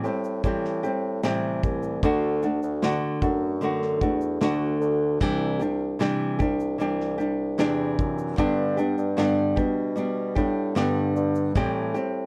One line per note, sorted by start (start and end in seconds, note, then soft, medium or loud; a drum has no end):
0.04 0.41 A2 loud
0.04 0.43 G3 soft
0.04 0.44 C4 soft
0.04 0.44 G4 medium
0.04 shaker soft
0.24 shaker soft
0.43 1.19 A2 loud
0.43 0.83 E3 medium
0.43 0.84 G3 medium
0.43 0.84 C4 medium
0.43 0.82 G4 medium
0.43 kick medium
0.43 shaker medium
0.65 snare soft
0.83 1.23 G3 soft
0.83 1.24 C4 medium
0.83 1.23 G4 medium
0.83 shaker soft
1.23 2.03 A2 medium
1.23 1.60 C3 medium
1.23 2.02 E3 medium
1.23 2.03 G3 medium
1.23 2.04 C4 medium
1.23 2.04 G4 medium
1.23 snare loud
1.23 shaker medium
1.63 2.00 C2 medium
1.63 kick medium
1.63 shaker medium
1.83 shaker soft
2.03 2.58 D2 loud
2.03 2.43 D3 medium
2.03 2.43 A3 medium
2.03 2.43 D4 medium
2.03 2.42 F#4 medium
2.03 kick medium
2.03 shaker medium
2.43 2.82 A3 soft
2.43 2.83 D4 soft
2.43 2.82 F#4 medium
2.43 shaker medium
2.62 2.99 D2 medium
2.62 shaker soft
2.82 3.22 D3 medium
2.82 3.23 A3 medium
2.82 3.22 D4 medium
2.82 3.21 F#4 medium
2.82 snare loud
2.82 shaker medium
3.22 3.98 F#2 medium
3.22 3.61 A3 soft
3.22 3.62 D4 medium
3.22 3.62 F#4 medium
3.22 kick medium
3.22 shaker soft
3.61 4.01 D3 medium
3.61 4.02 A3 medium
3.61 4.02 D4 medium
3.61 4.00 F#4 medium
3.61 shaker medium
3.82 snare soft
4.01 4.38 E2 medium
4.01 4.40 A3 soft
4.01 4.41 D4 medium
4.01 4.41 F#4 medium
4.01 kick medium
4.01 shaker soft
4.21 shaker medium
4.41 4.78 D2 loud
4.41 5.21 D3 medium
4.41 5.21 A3 medium
4.41 5.21 D4 medium
4.41 5.21 F#4 loud
4.41 snare loud
4.41 shaker medium
4.81 5.17 D2 medium
4.81 shaker medium
5.20 6.09 C2 loud
5.20 5.60 C3 medium
5.20 5.61 E3 medium
5.20 5.61 G3 medium
5.20 5.60 D4 loud
5.20 5.58 G4 loud
5.20 kick loud
5.20 shaker medium
5.60 5.99 G3 soft
5.60 6.00 D4 soft
5.60 6.00 G4 medium
5.60 shaker medium
5.99 6.39 C3 medium
5.99 6.40 E3 medium
5.99 6.40 G3 medium
5.99 6.39 D4 medium
5.99 6.38 G4 medium
5.99 snare loud
5.99 shaker medium
6.39 6.77 C2 loud
6.39 6.79 G3 soft
6.39 6.79 D4 soft
6.39 6.79 G4 medium
6.39 kick medium
6.39 shaker soft
6.60 shaker soft
6.78 7.55 C2 loud
6.78 7.19 E3 medium
6.78 7.19 G3 medium
6.78 7.19 D4 medium
6.78 7.17 G4 medium
6.78 shaker medium
7.00 snare soft
7.18 7.60 G3 soft
7.18 7.58 D4 medium
7.18 7.58 G4 medium
7.18 shaker soft
7.58 7.96 E2 medium
7.58 8.37 C3 medium
7.58 8.38 E3 medium
7.58 8.39 D4 loud
7.58 8.39 G4 medium
7.58 snare loud
7.58 shaker medium
7.99 8.35 F#2 medium
7.99 kick medium
7.99 shaker soft
8.18 shaker medium
8.37 8.78 G2 medium
8.37 8.94 G2 loud
8.37 8.78 D3 medium
8.37 8.78 G3 medium
8.37 8.78 B3 loud
8.37 8.77 D4 medium
8.37 8.76 G4 medium
8.37 kick loud
8.37 shaker medium
8.77 9.17 G3 soft
8.77 9.17 B3 medium
8.77 9.17 D4 medium
8.77 9.17 G4 medium
8.77 shaker medium
8.98 9.34 G2 medium
8.98 shaker soft
9.17 9.57 G2 medium
9.17 9.57 D3 medium
9.17 9.58 G3 medium
9.17 9.57 B3 medium
9.17 9.56 D4 loud
9.17 9.55 G4 medium
9.17 snare loud
9.17 shaker medium
9.56 10.33 B2 medium
9.56 9.94 G3 soft
9.56 9.96 B3 soft
9.56 9.97 D4 medium
9.56 9.97 G4 medium
9.56 kick medium
9.56 shaker soft
9.96 10.36 G3 medium
9.96 10.36 B3 medium
9.96 10.35 D4 medium
9.96 10.34 G4 medium
9.96 shaker medium
10.35 10.73 A2 loud
10.35 10.75 G3 soft
10.35 10.75 B3 medium
10.35 10.76 D4 medium
10.35 10.76 G4 medium
10.35 kick medium
10.35 shaker soft
10.75 11.55 G2 medium
10.75 11.13 G2 medium
10.75 11.55 D3 medium
10.75 11.55 G3 medium
10.75 11.56 B3 medium
10.75 11.56 D4 loud
10.75 11.57 G4 medium
10.75 snare loud
10.75 shaker medium
11.16 11.53 G2 loud
11.16 shaker medium
11.35 shaker medium
11.55 11.95 A2 medium
11.55 12.26 A2 medium
11.55 11.95 E3 medium
11.55 11.96 G3 medium
11.55 11.95 C4 medium
11.55 11.93 G4 medium
11.55 kick loud
11.55 shaker medium
11.94 12.26 G3 soft
11.94 12.26 C4 medium
11.94 12.26 G4 medium
11.94 shaker soft